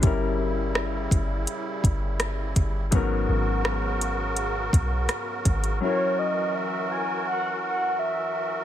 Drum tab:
HH |x-----x-x-x-x-x-|x-----x-x-x-x-xx|----------------|
SD |----r-------r---|----r-------r---|----------------|
BD |o-----o---o---o-|o---------o---o-|----------------|